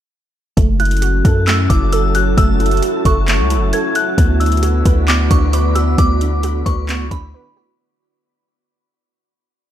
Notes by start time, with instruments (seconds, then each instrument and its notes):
0.57 808-style bass F#1, ambient pad F#3 C#4 E4 F#4 A4, synth pluck A3, synth texture F#4 E5 A5, kick, closed hi-hat
0.80 synth pluck E4, synth bell F#6, closed hi-hat
0.85 closed hi-hat
0.91 closed hi-hat
0.97 closed hi-hat
1.02 synth pluck F#4, closed hi-hat
1.25 808-style bass F#2, synth pluck A4, kick, closed hi-hat
1.47 synth pluck A3, synth bell E6, clap, closed hi-hat
1.70 808-style bass F#1, synth pluck E4, synth bell D6, kick, closed hi-hat
1.92 synth pluck A4, synth bell E6, closed hi-hat
2.15 synth pluck F#4, synth bell F#6, closed hi-hat
2.38 808-style bass F#1, synth pluck A3, synth bell E6, kick, closed hi-hat
2.60 synth pluck E4, closed hi-hat
2.66 closed hi-hat
2.71 closed hi-hat
2.77 closed hi-hat
2.82 synth pluck F#4, closed hi-hat
3.05 808-style bass F#1, synth pluck A4, synth bell C#6, kick, closed hi-hat
3.28 synth pluck A3, clap, closed hi-hat
3.39 808-style bass C#2
3.50 synth pluck E4, closed hi-hat
3.56 808-style bass F#1
3.73 synth pluck A4, synth bell G#6, closed hi-hat
3.95 synth pluck F#4, synth bell F#6, closed hi-hat
4.18 808-style bass D2, ambient pad D3 A3 B3 F#4, synth pluck B3, synth texture F#4 D5 B5, kick, closed hi-hat
4.40 synth pluck D4, synth bell E6, closed hi-hat
4.46 closed hi-hat
4.52 closed hi-hat
4.57 closed hi-hat
4.63 synth pluck F#4, closed hi-hat
4.85 808-style bass D2, synth pluck B4, kick, closed hi-hat
5.08 synth pluck B3, synth bell D6, clap, closed hi-hat
5.30 808-style bass D2, synth pluck D4, synth bell C#6, kick, closed hi-hat
5.53 synth pluck B4, synth bell D6, closed hi-hat
5.75 synth pluck F#4, synth bell E6, closed hi-hat
5.98 808-style bass D2, synth pluck B3, synth bell D6, kick, closed hi-hat
6.21 synth pluck D4, closed hi-hat
6.43 synth pluck F#4, closed hi-hat
6.66 808-style bass D2, synth pluck B4, synth bell C#6, kick, closed hi-hat
6.89 synth pluck B3, clap, closed hi-hat
7.00 808-style bass C#2
7.11 808-style bass D2, synth pluck D4, synth bell B5, kick, closed hi-hat
7.34 synth pluck B4
7.57 synth pluck F#4